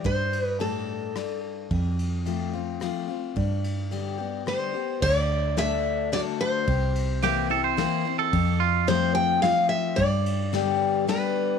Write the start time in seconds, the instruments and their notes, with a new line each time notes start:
0.04 steel-string acoustic guitar G2 C5, fingered electric bass G2, kick, ride
0.33 ride
0.43 steel-string acoustic guitar B4
0.60 steel-string acoustic guitar A2 A4, ride
1.16 steel-string acoustic guitar G2, cross-stick, ride
1.71 fingered electric bass F2, steel-string acoustic guitar F2, kick, ride
1.99 ride
2.26 steel-string acoustic guitar F3 A3 C4 F4, ride
2.53 steel-string acoustic guitar C4 F4
2.80 steel-string acoustic guitar F3 A3 C4 F4, cross-stick, ride
3.08 steel-string acoustic guitar C4 F4
3.36 steel-string acoustic guitar G2, fingered electric bass G2, kick, ride
3.64 ride
3.91 steel-string acoustic guitar D3 G3 B3 G4, ride
4.18 steel-string acoustic guitar B3 G4
4.46 steel-string acoustic guitar D3 G3 B3 G4 C5, cross-stick, ride
4.74 steel-string acoustic guitar B3 G4
5.02 fingered electric bass D2, steel-string acoustic guitar D3 D5, kick, crash
5.57 steel-string acoustic guitar D3 A3 D4 F#4 E5, snare, ride
6.12 steel-string acoustic guitar D3 A3 D4 F#4 D5, snare, ride
6.41 steel-string acoustic guitar C5
6.68 fingered electric bass C2, steel-string acoustic guitar C3, kick, ride
6.95 ride
7.22 steel-string acoustic guitar E3 A#3 C4 E4, clean electric guitar G4, snare, ride
7.50 steel-string acoustic guitar C4 E4, clean electric guitar A4
7.64 clean electric guitar C5
7.77 steel-string acoustic guitar E3 A#3 C4 E4, snare, ride
8.05 steel-string acoustic guitar C4 E4
8.19 clean electric guitar A4
8.33 steel-string acoustic guitar F2, fingered electric bass F2, kick, ride
8.60 clean electric guitar F4
8.87 steel-string acoustic guitar F3 A3 C4 F4 C5, snare, ride
9.15 steel-string acoustic guitar G5
9.42 steel-string acoustic guitar F3 A3 C4 F4 F5, snare, ride
9.69 steel-string acoustic guitar E5
9.96 fingered electric bass G2, steel-string acoustic guitar G2 D5, kick, ride
10.26 ride
10.53 steel-string acoustic guitar D3 G3 B3 G4, snare, ride
11.08 steel-string acoustic guitar D3 G3 B3 G4 B4, snare, ride